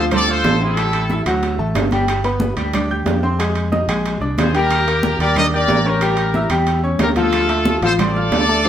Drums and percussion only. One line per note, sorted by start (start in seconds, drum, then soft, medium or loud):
0.11 high bongo medium
0.11 high conga soft
0.11 low conga medium
0.11 high timbale medium
0.11 claves medium
0.29 high conga soft
0.44 high bongo medium
0.44 low bongo medium
0.44 high conga medium
0.44 high timbale medium
0.44 low timbale medium
0.62 high conga soft
0.77 high bongo medium
0.77 high conga soft
0.77 high timbale medium
0.77 claves medium
0.93 high conga soft
0.93 high timbale medium
1.10 high bongo medium
1.10 high conga medium
1.10 low timbale medium
1.26 high bongo soft
1.26 high timbale medium
1.26 claves medium
1.43 high bongo medium
1.43 high conga soft
1.43 high timbale medium
1.59 high bongo soft
1.59 high conga soft
1.75 high bongo medium
1.75 low bongo medium
1.75 high conga medium
1.75 high timbale medium
1.75 low timbale medium
1.75 claves medium
1.91 high bongo soft
1.91 high conga medium
1.91 high timbale medium
2.08 high bongo medium
2.08 high conga soft
2.08 high timbale medium
2.08 claves medium
2.24 high conga soft
2.24 high timbale medium
2.40 high bongo medium
2.40 high conga medium
2.40 low timbale medium
2.57 high conga soft
2.57 high timbale medium
2.73 high bongo medium
2.73 high conga soft
2.73 low conga medium
2.73 high timbale medium
2.73 claves medium
2.90 high conga soft
3.06 high bongo medium
3.06 low bongo medium
3.06 high conga medium
3.06 high timbale medium
3.06 low timbale medium
3.23 high conga soft
3.39 high bongo medium
3.39 high conga soft
3.39 high timbale medium
3.39 claves medium
3.55 high conga soft
3.55 high timbale medium
3.72 high bongo medium
3.72 high conga medium
3.72 low timbale medium
3.89 high bongo soft
3.89 high timbale medium
3.89 claves medium
4.06 high bongo medium
4.06 high conga soft
4.06 high timbale medium
4.22 high bongo soft
4.22 high conga soft
4.38 high bongo medium
4.38 low bongo medium
4.38 high conga medium
4.38 high timbale medium
4.38 low timbale medium
4.38 claves medium
4.55 high bongo soft
4.55 high timbale medium
4.70 high bongo medium
4.70 high conga soft
4.70 high timbale medium
4.70 claves medium
4.86 high conga soft
4.86 high timbale medium
5.03 high bongo medium
5.03 high conga loud
5.03 low timbale medium
5.20 high conga soft
5.20 high timbale medium
5.36 high bongo medium
5.36 high conga soft
5.36 low conga medium
5.36 high timbale medium
5.36 claves medium
5.53 high conga soft
5.68 high bongo medium
5.68 low bongo medium
5.68 high conga medium
5.68 high timbale medium
5.68 low timbale medium
5.85 high conga soft
6.01 high bongo medium
6.01 high conga soft
6.01 high timbale medium
6.01 claves medium
6.17 high conga soft
6.17 high timbale medium
6.34 high bongo medium
6.34 high conga medium
6.34 low timbale medium
6.50 high bongo soft
6.50 high timbale medium
6.50 claves medium
6.67 high bongo medium
6.67 high conga soft
6.67 high timbale medium
6.84 high bongo soft
6.84 high conga soft
6.99 high bongo medium
6.99 low bongo medium
6.99 high conga medium
6.99 high timbale medium
6.99 low timbale medium
6.99 claves medium
7.16 high bongo soft
7.16 high conga medium
7.16 high timbale medium
7.33 high bongo medium
7.33 high conga soft
7.33 high timbale medium
7.33 claves medium
7.49 high conga soft
7.49 high timbale medium
7.65 high bongo medium
7.65 high conga medium
7.65 low timbale medium
7.82 high conga soft
7.82 high timbale medium
7.99 high bongo medium
7.99 high conga soft
7.99 low conga medium
7.99 high timbale medium
7.99 claves medium
8.16 high conga soft
8.32 high bongo medium
8.32 low bongo medium
8.32 high conga medium
8.32 high timbale medium
8.32 low timbale medium
8.49 high conga soft
8.64 high bongo medium
8.64 high conga soft
8.64 high timbale medium
8.64 claves medium